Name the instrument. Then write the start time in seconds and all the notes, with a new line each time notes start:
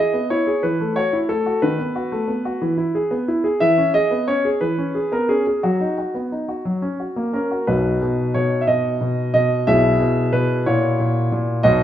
grand piano
Already playing: G#4 D#5
0.13 B3
0.30 E4 C#5
0.47 G#4
0.63 E3 B4
0.81 A3
0.96 F#4 C#5
1.13 E4
1.29 A3 A4
1.46 F#4
1.62 D#3 B4
1.79 B3
1.96 F#4
2.12 A3
2.28 B3
2.45 F#4
2.62 E3
2.77 E4
2.95 G#4
3.11 B3
3.28 E4
3.44 G#4
3.60 E3 E5
3.78 C#4
3.94 G#4 D#5
4.11 B3
4.28 C#4 C#5
4.45 G#4
4.61 E3 B4
4.78 C#4
4.95 G#4
5.12 B3 A#4
5.29 C#4 G#4
5.47 G#4
5.63 F#3 F#4
5.81 D#4
5.98 F#4
6.15 B3
6.32 D#4
6.49 F#4
6.65 F#3
6.82 C#4
7.00 F#4
7.16 A#3
7.33 C#4 A#4
7.51 F#4
7.67 B1 B2 D#4 F#4 B4
8.01 B2
8.34 B2 C#5
8.61 E5
8.67 B2 D#5
9.01 B2
9.34 B2 D#5
9.67 B1 B2 E4 G#4 E5
10.00 B2
10.33 B2 B4
10.66 A#2 E4 F#4 C#5
10.99 A#2
11.32 A#2
11.63 B1 B2 D#4 F#4 D#5